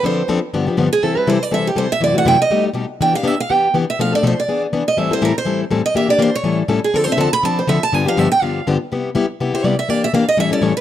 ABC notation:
X:1
M:4/4
L:1/8
Q:"Swing" 1/4=244
K:C
V:1 name="Steel-string acoustic guitar"
c2 z4 z _A | A B c d e G c e | d ^f g _e2 z3 | g f e f g2 z e |
f d c d2 z2 _e | e c _B c2 z2 _e | e d c _d2 z2 _A | (3A c e a b a c e a |
_a f e g f2 z2 | z4 z c d e | d e f _e =e d ^c B |]
V:2 name="Steel-string acoustic guitar"
[D,F,CDA] z [D,F,CDA] z [G,,D,F,B,DG] [F,B,DG] [G,,D,F,B,DG] z | [C,E,G,CEA] [G,CEA] [C,E,G,CEA] z [C,E,G,CEA] z [C,E,G,CEA] z | [^F,,C,E,A,E^F] [E,A,EF] [F,,C,E,A,EF] z [B,,G,A,^DG] z [B,,G,A,DG] z | [E,B,DG] [B,DG] [E,B,DG] z [E,B,DG] z [E,B,DG] z |
[B,,F,A,DA] [A,DA] [B,,F,A,DA] z [E,B,D^G] z [E,B,DG] z | [A,,E,G,CEA] [G,CEA] [A,,E,G,CEA] z [A,,E,G,CEA] z [A,,E,G,CEA] z | [E,_B,DG] [B,DG] [E,B,DG] z [A,,E,G,^CEA] z [A,,E,G,CEA] z | [D,F,CDA] [CDA] [D,F,CDA] z [D,F,CDA] z [D,F,CDA] z |
[G,,D,F,B,DG] [F,B,DG] [G,,D,F,B,DG] z [G,,D,F,B,DG] z [G,,D,F,B,DG] z | [C,G,B,EG] z [C,G,B,EG] z [C,G,B,EG] [B,EG] [C,G,B,EG] z | [E,_B,DG] z [E,B,DG] z [A,,E,G,^CEA] [G,CEA] [A,,E,G,CEA] z |]